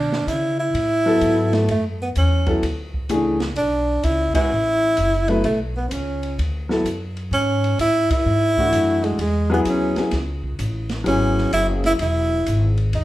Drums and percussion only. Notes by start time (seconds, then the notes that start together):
0.12 snare
0.28 hi-hat pedal, ride
0.75 ride
1.21 hi-hat pedal, ride
1.53 snare, ride
1.68 ride
2.15 hi-hat pedal, ride
2.46 kick, ride
2.63 ride
2.94 kick
3.09 hi-hat pedal, ride
3.40 snare, ride
3.56 ride
4.03 hi-hat pedal, ride
4.35 kick, ride
4.97 hi-hat pedal, ride
5.28 ride
5.44 ride
5.91 hi-hat pedal, ride
6.23 ride
6.39 ride
6.70 snare
6.86 hi-hat pedal, ride
7.17 ride
7.33 ride
7.64 ride
7.79 hi-hat pedal, ride
8.10 kick, ride
8.57 kick
8.72 hi-hat pedal, ride
9.04 ride
9.19 ride
9.65 hi-hat pedal, ride
9.96 snare, ride
10.11 snare, ride
10.43 kick
10.59 hi-hat pedal, ride
10.89 snare, ride
11.06 ride
11.38 snare
11.53 hi-hat pedal, ride
11.84 snare, ride
11.99 ride
12.46 hi-hat pedal, ride
12.77 ride
12.93 ride